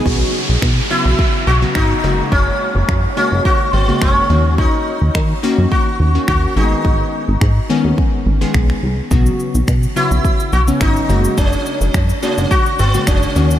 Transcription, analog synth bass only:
\new Staff \with { instrumentName = "Analog synth bass" } { \clef bass \time 4/4 \key fis \mixolydian \tempo 4 = 106 b,,8 r16 b,,16 b,8 r16 b,,16 r8 b,,8 gis,,8 fis,,8 | fis,,8 r16 fis,,16 fis,8 r16 fis,,16 r8 gis,,8 fis,,8 dis,8~ | dis,8 r16 dis,16 dis8 r16 fis,16 r8 dis,8 dis,8 gis,,8 | gis,,8 r16 gis,,16 gis,8 r16 dis,16 r8 gis,,8 b,,8 bis,,8 |
b,,8 r16 b,,16 b,8 r16 b,,16 r8 b,,8 gis,,8 fis,,8 | fis,,8 r16 fis,,16 fis,8 r16 fis,,16 r8 gis,,8 fis,,8 dis,8 | }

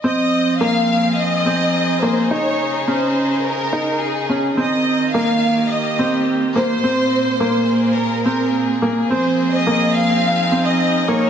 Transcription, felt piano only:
\new Staff \with { instrumentName = "Felt piano" } { \time 4/4 \key f \minor \tempo 4 = 106 c'4 bes4 r8 c'4 bes8 | ees'4 des'4 r8 ees'4 des'8 | c'4 bes4 r8 c'4 bes8 | c'4 bes4 r8 c'4 bes8 |
c'4 bes4 r8 c'4 bes8 | }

